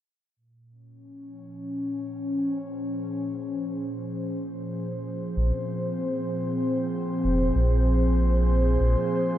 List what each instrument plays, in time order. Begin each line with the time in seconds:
0.36 analog synth pad A#2
0.71 analog synth pad C#4
0.94 analog synth pad F3
2.12 analog synth pad C5
2.60 analog synth pad G#4
5.31 analog synth pad C4
5.36 sub bass A#1
7.24 sub bass F1
7.55 sub bass A#1
8.80 sub bass A#1